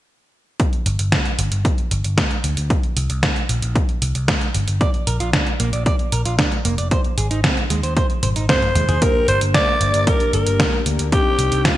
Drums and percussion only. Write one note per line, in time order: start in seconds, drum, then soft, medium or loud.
0.60 kick loud
0.60 closed hi-hat medium
0.73 closed hi-hat soft
0.86 closed hi-hat medium
0.99 closed hi-hat medium
1.12 kick loud
1.12 snare loud
1.12 closed hi-hat medium
1.25 closed hi-hat soft
1.39 closed hi-hat medium
1.52 closed hi-hat medium
1.65 kick loud
1.65 closed hi-hat medium
1.78 closed hi-hat soft
1.91 closed hi-hat medium
2.04 closed hi-hat medium
2.18 kick loud
2.18 snare loud
2.18 closed hi-hat soft
2.31 closed hi-hat soft
2.44 closed hi-hat medium
2.57 closed hi-hat medium
2.70 kick loud
2.70 closed hi-hat soft
2.83 closed hi-hat soft
2.97 closed hi-hat medium
3.10 closed hi-hat soft
3.23 kick loud
3.23 snare loud
3.23 closed hi-hat medium
3.36 closed hi-hat soft
3.49 closed hi-hat medium
3.62 closed hi-hat soft
3.76 kick loud
3.76 closed hi-hat medium
3.89 closed hi-hat soft
4.02 closed hi-hat medium
4.15 closed hi-hat medium
4.28 kick loud
4.28 snare loud
4.28 closed hi-hat soft
4.41 closed hi-hat soft
4.54 closed hi-hat medium
4.68 closed hi-hat medium
4.81 kick loud
4.81 closed hi-hat soft
4.94 closed hi-hat soft
5.07 closed hi-hat medium
5.20 closed hi-hat soft
5.33 kick loud
5.33 snare loud
5.33 closed hi-hat soft
5.47 closed hi-hat soft
5.60 closed hi-hat medium
5.73 closed hi-hat soft
5.86 kick loud
5.86 closed hi-hat soft
5.99 closed hi-hat soft
6.12 closed hi-hat medium
6.25 closed hi-hat soft
6.39 kick loud
6.39 snare loud
6.39 closed hi-hat soft
6.52 closed hi-hat soft
6.65 closed hi-hat medium
6.78 closed hi-hat soft
6.91 kick loud
6.91 closed hi-hat soft
7.04 closed hi-hat soft
7.18 closed hi-hat medium
7.31 closed hi-hat soft
7.44 kick loud
7.44 snare loud
7.44 closed hi-hat soft
7.57 closed hi-hat soft
7.70 closed hi-hat medium
7.83 closed hi-hat soft
7.97 kick loud
7.97 closed hi-hat soft
8.10 closed hi-hat soft
8.23 closed hi-hat medium
8.23 high tom medium
8.36 closed hi-hat soft
8.49 kick loud
8.49 snare loud
8.49 closed hi-hat soft
8.49 mid tom medium
8.62 closed hi-hat soft
8.62 mid tom medium
8.75 closed hi-hat medium
8.75 mid tom medium
8.89 closed hi-hat soft
8.89 mid tom medium
9.02 kick loud
9.02 closed hi-hat medium
9.28 closed hi-hat medium
9.41 closed hi-hat medium
9.54 kick loud
9.54 snare loud
9.54 closed hi-hat medium
9.81 closed hi-hat medium
9.94 closed hi-hat medium
10.07 kick loud
10.07 closed hi-hat medium
10.20 closed hi-hat soft
10.33 closed hi-hat medium
10.47 closed hi-hat medium
10.60 kick loud
10.60 snare loud
10.60 closed hi-hat medium
10.86 closed hi-hat medium
10.99 closed hi-hat medium
11.12 kick loud
11.12 closed hi-hat medium
11.39 closed hi-hat medium
11.52 closed hi-hat medium
11.65 kick loud
11.65 snare loud
11.65 closed hi-hat medium